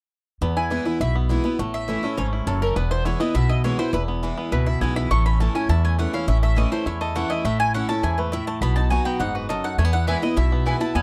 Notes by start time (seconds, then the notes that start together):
0.41 E2 B3
0.57 E4 G#5
0.70 E3 G#3 B3 E4
0.85 B3 E4
1.00 B1 B2 E4 E5
1.16 B3
1.29 E3 G#3 B3 E4
1.44 B3 E4
1.59 A1 A2 A3
1.74 E5
1.88 E3 A3 C#4 E4
2.03 A3 C#4 E4
2.17 G#1 G#2 C#4 C#5
2.33 E4
2.47 F#1 F#2 A4 C#5
2.62 C#4 A#4
2.76 E1 E2 B3 B4
2.91 E4 C5
3.05 E3 G#3 B3 E4 C#5
3.20 B3 E4 D#5
3.34 B1 B2 E4 E5
3.49 E4 D#5
3.64 E3 G#3 B3 E4 C#5
3.79 B3 E4 C5
3.93 E1 E2 E4 B4
4.08 B3
4.23 E3 G#3 B3 E4
4.37 B3
4.52 C#2 B2 E4 B4
4.66 E4 E5
4.81 B1 E3 G#3 B3 E4 G#5
4.96 E4 B5
5.10 A1 A2 A3 C#6
5.26 C#4 B5
5.40 E3 A3 C#4 E4 A5
5.55 C#4 E4 G#5
5.69 E2 E4 A5
5.84 A3 G#5
5.99 E3 A3 C#4 E4 F#5
6.13 C#4 E4 F5
6.28 A1 A2 C#4 E5
6.43 A3 E5
6.56 E3 A3 C#4 E4 D#5
6.72 A3 C#4 E4 C5
6.86 E2 E4 C#5
7.01 A4 D#5
7.15 E3 A3 C#4 E4 F#5
7.30 E4 D#5
7.45 A1 A2 A3 E5
7.60 E4 G#5
7.74 E3 A3 C#4 E4 F#5
7.89 C#4 E4 A4 A5
8.03 E2 G#2 E4 G#5
8.18 A3 B4
8.32 A2 E4 E5
8.47 A3 A5
8.61 B1 B2 B3 B5
8.76 D#4 A5
8.90 F#3 B3 D#4 F#4 G#5
9.05 B3 G5
9.20 F#1 G#2 D#4 F#5
9.35 F#4 B4
9.49 F#2 A4 D#5
9.64 D#4 F#5
9.78 E2 A3 G#5
9.85 B3
9.93 E4 F#5
10.07 E3 G#3 B3 E4 B4 E5 G#5
10.22 B3 E4 D#5
10.37 B1 B2 E4 E5
10.52 B3
10.66 E3 G#3 B3 E4 B4 G#5
10.80 B3 E4 A5
10.95 E2 B3 G#5